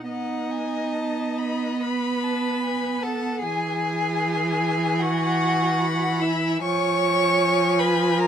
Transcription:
0.08 B3 D#4 D#5 F#5
0.52 G#5
0.94 A5
1.38 B5
1.81 B4 B5
2.24 A5
2.64 G#5
3.02 A4 F#5 A5
3.41 E3 G#4 G#5
3.83 G#5
5.01 F#4 F#5
5.80 B5
6.21 E4 E5
6.62 F3 C#5 G#5 C#6
7.78 B4 B5
8.19 A#4 A#5

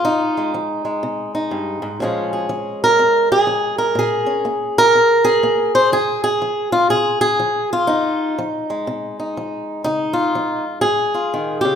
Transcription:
Already playing: F4
0.05 F2 D#4
0.37 G#3
0.54 F3
0.85 G#3
1.03 C3
1.35 D#4
1.51 G2
1.82 G#2
2.00 A#2 F3 G#3 C#4 G#4
2.33 G#4
2.49 F3
2.84 A#4
2.99 F2
3.32 G#4
3.47 F3
3.78 A#4
3.95 A#2 G#4
4.26 C#4
4.45 A#3
4.78 A#4
4.95 F2
5.25 G#4
5.43 A#3
5.75 C5
5.92 F2 G#4
6.24 G#4
6.42 F3
6.72 F4
6.90 C3 G#4
7.21 G#4
7.40 F3
7.73 F4
7.87 F2 D#4
8.39 F3
8.70 G#3
8.87 C3
9.20 D#4
9.37 F3
9.84 C#3 D#4
10.13 F4
10.35 F3
10.81 G#2 G#4
11.14 F4
11.34 D#3
11.61 C#3 G4

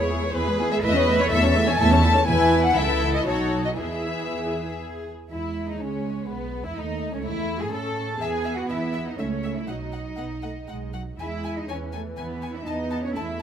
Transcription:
Already playing: E2 E4 C#5
0.00 G#3 G#4 B4
0.11 B3 E4 G#4
0.23 G#3 G#4 B4
0.35 E2 B3 E4 G#4 B4
0.47 G#3 G#4 B4
0.59 B3 E4 G#4
0.71 G#3 G#4 B4 E5
0.83 E2 A3 E4 B4 D#5 E5
0.95 E3 C#4 C#5
1.07 A3 E4 E5
1.19 E3 C#4 C#5
1.31 E2 A3 E4 A4 E5
1.43 E3 C#4 C#5
1.55 A3 E4 E5
1.67 E3 C#4 C#5 G#5
1.79 E2 A3 E4 E5 A5
1.91 E3 C#4 C#5
2.03 A3 E4 E5
2.15 E3 C#4 C#5
2.27 E2 E3 E4 B4 G#5
2.64 F#5
2.76 C#2 E3 E4 A4 E5
3.14 D#5
3.26 B1 F#3 D#4 F#4 A4 C#5
3.65 D#5
3.77 E2 E3 E4 G#4 E5
5.31 E2 G#3 E4 E5
5.68 D#2 D#4 D#5
5.80 C#2 C#4 C#5
6.29 B1 B3 B4
6.65 E2 E4 E5
6.77 D#2 A3 D#4 D#5
7.13 C#2 C#4 C#5
7.24 E2 E4 E5
7.61 G#2 G#4 G#5
7.72 A2 C#4 A4 A5
8.21 E2 B3 G#4 E5 G#5
8.45 E5
8.57 F#4 F#5
8.69 E2 E4 E5
8.94 E5
9.07 D#4 D#5
9.18 C#2 A3 C#4 C#5 E5
9.44 E5
9.56 E4 E5
9.67 B1 F#3 D#4 D#5 F#5
9.92 F#5
10.16 B1 B3 F#5
10.42 A3 F#5
10.68 B1 G#3 F#5
10.93 F#3 F#5
11.19 E2 G#3 E4 E5 G#5
11.44 G#5
11.57 D#4 D#5
11.69 E2 E3 C#4 C#5 G#5
11.93 A3 A4 G#5
12.17 E2 B3 B4 G#5
12.42 G#5
12.56 E4 E5
12.67 E2 B3 D#4 D#5 A5
12.91 A5
13.04 C#4 C#5
13.15 E2 A3 E4 E5 A5

